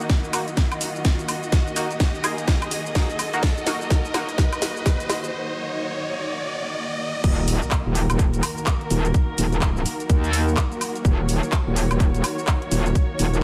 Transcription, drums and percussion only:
0.00 closed hi-hat soft
0.00 shaker soft
0.10 kick loud
0.10 snare soft
0.10 closed hi-hat medium
0.10 shaker soft
0.24 shaker soft
0.33 open hi-hat loud
0.33 high woodblock medium
0.33 shaker medium
0.48 closed hi-hat soft
0.48 shaker soft
0.57 kick loud
0.57 snare medium
0.57 closed hi-hat medium
0.57 shaker soft
0.72 closed hi-hat soft
0.72 high woodblock medium
0.72 shaker soft
0.81 open hi-hat loud
0.81 shaker medium
0.96 shaker soft
1.05 kick loud
1.05 snare medium
1.05 closed hi-hat medium
1.05 shaker soft
1.19 closed hi-hat soft
1.19 shaker soft
1.28 open hi-hat medium
1.28 high woodblock medium
1.28 shaker medium
1.43 closed hi-hat soft
1.43 shaker soft
1.52 kick loud
1.52 snare medium
1.52 closed hi-hat medium
1.52 shaker soft
1.67 shaker soft
1.76 open hi-hat loud
1.76 shaker medium
1.91 closed hi-hat soft
1.91 shaker soft
2.00 kick loud
2.00 snare medium
2.00 closed hi-hat medium
2.00 shaker soft
2.15 shaker soft
2.24 open hi-hat medium
2.24 high woodblock medium
2.24 shaker medium
2.38 closed hi-hat medium
2.38 shaker soft
2.48 kick loud
2.48 snare medium
2.48 closed hi-hat medium
2.48 shaker soft
2.62 closed hi-hat medium
2.62 high woodblock medium
2.62 shaker soft
2.71 open hi-hat loud
2.71 shaker medium
2.86 shaker soft
2.95 kick loud
2.95 snare medium
2.95 closed hi-hat medium
2.95 shaker soft
3.10 closed hi-hat soft
3.10 shaker soft
3.19 open hi-hat medium
3.19 high woodblock medium
3.19 shaker medium
3.33 closed hi-hat soft
3.33 shaker soft
3.43 kick loud
3.43 snare medium
3.43 closed hi-hat medium
3.43 shaker soft
3.58 shaker soft
3.67 snare medium
3.67 open hi-hat loud
3.67 shaker medium
3.81 closed hi-hat soft
3.81 shaker soft
3.90 kick loud
3.90 snare medium
3.90 closed hi-hat medium
3.90 shaker soft
4.05 shaker soft
4.14 snare medium
4.14 open hi-hat medium
4.14 high woodblock medium
4.14 shaker medium
4.29 closed hi-hat medium
4.29 shaker soft
4.38 kick loud
4.38 snare medium
4.38 closed hi-hat medium
4.38 shaker soft
4.53 closed hi-hat medium
4.53 high woodblock medium
4.53 shaker soft
4.62 snare medium
4.62 open hi-hat loud
4.62 shaker medium
4.77 shaker soft
4.86 kick loud
4.86 snare medium
4.86 closed hi-hat medium
4.86 shaker soft
5.00 closed hi-hat soft
5.00 shaker soft
5.10 snare medium
5.10 open hi-hat medium
5.10 high woodblock medium
5.10 shaker medium
5.24 closed hi-hat soft
5.24 shaker soft
7.24 kick loud
7.24 closed hi-hat medium
7.24 crash loud
7.24 shaker soft
7.48 open hi-hat loud
7.48 shaker medium
7.62 closed hi-hat soft
7.62 shaker soft
7.71 kick loud
7.71 clap loud
7.71 closed hi-hat medium
7.71 shaker soft
7.95 open hi-hat loud
7.95 shaker medium
8.10 closed hi-hat medium
8.10 high woodblock medium
8.10 shaker soft
8.19 kick loud
8.19 closed hi-hat medium
8.19 shaker soft
8.34 closed hi-hat medium
8.34 shaker soft
8.43 open hi-hat loud
8.43 high woodblock medium
8.43 shaker medium
8.58 shaker soft
8.66 kick loud
8.66 clap loud
8.66 closed hi-hat medium
8.66 shaker soft
8.81 closed hi-hat soft
8.90 open hi-hat loud
8.90 shaker medium
9.05 closed hi-hat soft
9.05 shaker soft
9.14 kick loud
9.14 closed hi-hat medium
9.14 shaker soft
9.38 open hi-hat loud
9.38 shaker medium
9.53 closed hi-hat soft
9.53 shaker soft
9.61 kick loud
9.61 clap loud
9.61 closed hi-hat medium
9.61 shaker soft
9.77 shaker soft
9.86 open hi-hat loud
9.86 shaker medium
10.00 closed hi-hat medium
10.00 shaker soft
10.10 kick loud
10.10 closed hi-hat medium
10.10 shaker soft
10.24 closed hi-hat medium
10.24 shaker soft
10.33 open hi-hat loud
10.33 shaker medium
10.48 shaker soft
10.57 kick loud
10.57 clap loud
10.57 closed hi-hat medium
10.57 high woodblock medium
10.57 shaker soft
10.72 closed hi-hat soft
10.72 shaker soft
10.81 open hi-hat loud
10.81 high woodblock medium
10.81 shaker medium
10.96 closed hi-hat soft
10.96 shaker soft
11.05 kick loud
11.05 closed hi-hat medium
11.05 shaker soft
11.29 open hi-hat loud
11.29 shaker medium
11.43 closed hi-hat soft
11.43 shaker soft
11.52 kick loud
11.52 clap loud
11.52 closed hi-hat medium
11.52 shaker soft
11.76 open hi-hat loud
11.76 shaker medium
11.91 closed hi-hat medium
11.91 high woodblock medium
11.91 shaker soft
12.00 kick loud
12.00 closed hi-hat medium
12.00 shaker soft
12.14 closed hi-hat soft
12.14 shaker soft
12.24 open hi-hat loud
12.24 high woodblock medium
12.24 shaker medium
12.39 shaker soft
12.47 kick loud
12.47 clap loud
12.47 closed hi-hat medium
12.47 shaker soft
12.62 closed hi-hat soft
12.71 open hi-hat loud
12.71 shaker medium
12.86 closed hi-hat soft
12.86 shaker soft
12.95 kick loud
12.95 closed hi-hat medium
12.95 shaker soft
13.19 open hi-hat loud
13.19 shaker medium
13.34 closed hi-hat soft
13.34 shaker soft

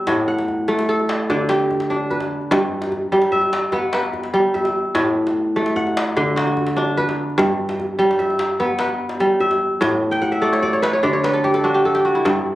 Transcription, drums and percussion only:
0.07 djembe slap medium
0.07 djembe tone medium
0.07 djembe bass medium
0.28 djembe slap soft
0.39 djembe slap soft
0.39 djembe tone soft
0.48 djembe slap soft
0.48 djembe bass medium
0.58 djembe slap soft
0.68 djembe tone medium
0.79 djembe slap soft
0.89 djembe slap soft
0.99 djembe tone medium
1.09 djembe slap medium
1.30 djembe tone medium
1.30 djembe bass medium
1.49 djembe slap medium
1.60 djembe slap soft
1.60 djembe tone soft
1.71 djembe slap soft
1.71 djembe bass medium
1.80 djembe slap medium
1.91 djembe slap soft
1.91 djembe tone medium
2.11 djembe bass medium
2.20 djembe slap soft
2.20 djembe tone medium
2.31 djembe slap soft
2.41 djembe slap soft
2.52 djembe slap medium
2.52 djembe tone medium
2.52 djembe bass medium
2.61 djembe slap soft
2.82 djembe slap medium
2.82 djembe tone medium
2.92 djembe bass medium
3.12 djembe tone medium
3.22 djembe slap medium
3.32 djembe slap soft
3.32 djembe bass medium
3.42 djembe tone medium
3.53 djembe slap medium
3.72 djembe tone medium
3.72 djembe bass medium
3.93 djembe slap medium
4.03 djembe slap soft
4.03 djembe tone medium
4.13 djembe slap soft
4.13 djembe bass medium
4.24 djembe slap medium
4.34 djembe slap soft
4.34 djembe tone medium
4.44 djembe slap soft
4.55 djembe bass medium
4.65 djembe slap soft
4.65 djembe tone medium
4.85 djembe slap soft
4.95 djembe slap medium
4.95 djembe tone medium
4.95 djembe bass medium
5.06 djembe slap soft
5.27 djembe slap medium
5.27 djembe tone medium
5.56 djembe tone medium
5.66 djembe slap medium
5.76 djembe slap soft
5.76 djembe bass medium
5.87 djembe tone medium
5.97 djembe slap medium
6.17 djembe tone medium
6.17 djembe bass medium
6.28 djembe slap soft
6.37 djembe slap medium
6.47 djembe slap soft
6.47 djembe tone medium
6.57 djembe slap soft
6.57 djembe bass medium
6.66 djembe slap medium
6.78 djembe slap soft
6.78 djembe tone medium
6.88 djembe slap soft
6.98 djembe bass medium
7.09 djembe slap medium
7.09 djembe tone soft
7.30 djembe slap soft
7.39 djembe slap medium
7.39 djembe tone medium
7.39 djembe bass medium
7.49 djembe slap soft
7.69 djembe slap medium
7.69 djembe tone medium
7.80 djembe bass medium
8.00 djembe tone medium
8.11 djembe slap medium
8.20 djembe slap soft
8.20 djembe bass medium
8.30 djembe tone medium
8.39 djembe slap medium
8.60 djembe tone medium
8.60 djembe bass medium
8.70 djembe slap soft
8.79 djembe slap medium
8.89 djembe slap soft
8.89 djembe tone soft
9.00 djembe slap soft
9.09 djembe slap medium
9.20 djembe slap soft
9.20 djembe tone medium
9.40 djembe bass medium
9.51 djembe slap soft
9.51 djembe tone soft
9.82 djembe slap medium
9.82 djembe tone medium
9.82 djembe bass medium
10.03 djembe slap soft
10.13 djembe slap soft
10.13 djembe tone medium
10.23 djembe bass medium
10.33 djembe slap soft
10.44 djembe tone medium
10.53 djembe slap medium
10.63 djembe bass medium
10.74 djembe tone medium
10.83 djembe slap medium
11.04 djembe tone medium
11.04 djembe bass medium
11.15 djembe slap soft
11.24 djembe slap medium
11.34 djembe slap soft
11.34 djembe tone soft
11.44 djembe slap soft
11.44 djembe bass medium
11.54 djembe slap soft
11.65 djembe slap soft
11.65 djembe tone medium
11.76 djembe slap soft
11.85 djembe slap soft
11.85 djembe bass medium
11.95 djembe slap soft
11.95 djembe tone soft
12.16 djembe slap soft
12.26 djembe slap medium
12.26 djembe tone medium
12.26 djembe bass medium
12.37 djembe slap soft

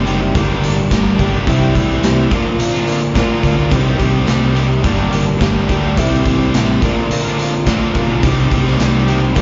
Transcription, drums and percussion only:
0.07 closed hi-hat medium
0.35 kick loud
0.35 closed hi-hat medium
0.64 closed hi-hat medium
0.91 kick medium
0.91 snare loud
0.91 closed hi-hat medium
1.19 kick medium
1.19 closed hi-hat medium
1.47 kick loud
1.47 closed hi-hat medium
1.75 kick medium
1.75 closed hi-hat medium
2.03 snare loud
2.03 closed hi-hat medium
2.31 kick loud
2.31 snare soft
2.31 closed hi-hat medium
2.60 closed hi-hat medium
2.87 closed hi-hat medium
3.15 kick medium
3.15 snare loud
3.15 closed hi-hat medium
3.43 kick medium
3.43 closed hi-hat medium
3.72 kick loud
3.72 closed hi-hat medium
4.00 kick medium
4.00 closed hi-hat medium
4.27 snare loud
4.27 closed hi-hat medium
4.56 closed hi-hat medium
4.84 kick loud
4.84 closed hi-hat medium
5.12 closed hi-hat medium
5.41 kick medium
5.41 snare loud
5.41 closed hi-hat medium
5.69 kick medium
5.69 closed hi-hat medium
5.97 kick loud
5.97 closed hi-hat medium
6.26 kick medium
6.26 closed hi-hat medium
6.54 snare loud
6.54 closed hi-hat medium
6.82 kick medium
6.82 snare soft
6.82 closed hi-hat medium
7.11 closed hi-hat loud
7.39 closed hi-hat medium
7.66 kick medium
7.66 snare loud
7.66 closed hi-hat loud
7.95 kick medium
7.95 closed hi-hat medium
8.23 kick loud
8.23 closed hi-hat loud
8.52 kick medium
8.52 closed hi-hat medium
8.67 snare soft
8.80 snare loud
8.80 closed hi-hat medium
9.08 closed hi-hat medium
9.36 kick loud
9.36 closed hi-hat medium

